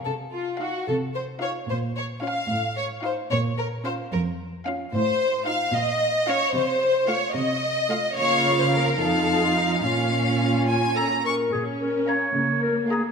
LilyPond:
<<
  \new Staff \with { instrumentName = "Violin section" } { \time 6/8 \key bes \minor \tempo 4. = 74 r4 f''8 r4 f''8 | r4 f''8 r4 f''8 | r4 f''8 r4 f''8 | r4 f''8 r4 f''8 |
r4 f''8 r4 f''8 | f''4. f''4. | f''4. aes''8 bes''8 des'''8 | r4 bes''8 r4 bes''8 | }
  \new Staff \with { instrumentName = "Violin section" } { \time 6/8 \key bes \minor a'8 f'8 ges'8 a'8 c''8 des''8 | c''8 des''8 f''4 des''8 c''8 | des''8 bes'8 c''8 bes'8 r4 | c''4 f''8 ees''4 des''8 |
c''4 des''8 ees''4. | des''8. c''16 bes'8 a'8. f'16 ees'8 | des'2~ des'8 r8 | r4 f''8 r4 f''8 | }
  \new Staff \with { instrumentName = "Clarinet" } { \time 6/8 \key bes \minor r2. | r2. | r2. | r2. |
r2. | r2. | r4. f'8 a'8 bes'8 | aes'8 bes'8 des''4 bes'8 aes'8 | }
  \new Staff \with { instrumentName = "Viola section" } { \time 6/8 \key bes \minor r4 <ees' f'>8 r4 <ees' f'>8 | r4 <des' f'>8 r4 <ees' f'>8 | r4 <des' f'>8 r4 <des' f'>8 | r4 <ees' f'>8 r4 <des' f'>8 |
r4 <a f'>8 r4 <a f'>8 | <bes f'>4. <ees' f'>4. | <des' f'>2~ <des' f'>8 r8 | des'4. bes4. | }
  \new Staff \with { instrumentName = "Cello section" } { \clef bass \time 6/8 \key bes \minor c4. c4. | bes,4. a,4. | bes,4. f,4. | a,4. bes,4. |
c4. c4. | des4. f,4. | bes,2~ bes,8 r8 | bes,4. des4. | }
>>